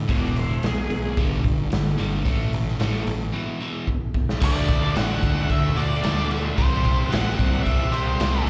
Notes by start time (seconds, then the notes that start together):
0.08 E1 E2 B2 E3 F#4 D5, kick, open hi-hat
0.36 E2 B2 E4 C5, open hi-hat
0.63 B1 E2 B2 G#4, snare, open hi-hat
0.90 B1 E2 B2, open hi-hat
1.17 G1 G2 D3 G3, kick, open hi-hat
1.44 G1 G2 D3, kick, open hi-hat
1.70 G1 G2 D3, snare, open hi-hat
1.98 G1 G2 D3 G3, open hi-hat
2.24 A1 A2 E3 A3, kick, open hi-hat
2.52 A1 A2 E3, open hi-hat
2.68 snare
2.80 A1 A2 E3 A3, snare, open hi-hat
3.07 A1 A2 E3, open hi-hat
3.33 E2 B2 E3
3.60 E2 B2 E3
3.87 E2 B2, kick
4.14 E2 B2, kick
4.29 snare
4.41 D2 D3 A3 D4 F#4 D5, kick, crash
4.67 D2 A3 D4 F#4, kick, crash
4.95 A1 D3 A3 D4 F#4 F#5, snare, crash
5.23 D2 A3 D4 F#4, kick, crash
5.50 D2 E5, kick, crash
5.76 D2 A3 D4 F#4 D5, crash
6.03 D2 D3 A3 D4 F#4, snare, crash
6.30 A3 D4 F#4, crash
6.57 C2 C3 E3 G3 C4 G4 C5, kick, crash
6.84 C2 G3 C4 G4, kick, crash
7.10 A1 E3 G3 C4 F#5, snare, crash
7.14 G4
7.39 C2 G3 C4 G4, kick, crash
7.63 C2 E5, kick, crash
7.92 C2 G3 C4 G4 C5, crash
8.20 C2 C3 E3 G3 C4 G4, snare, crash
8.46 C#2 G4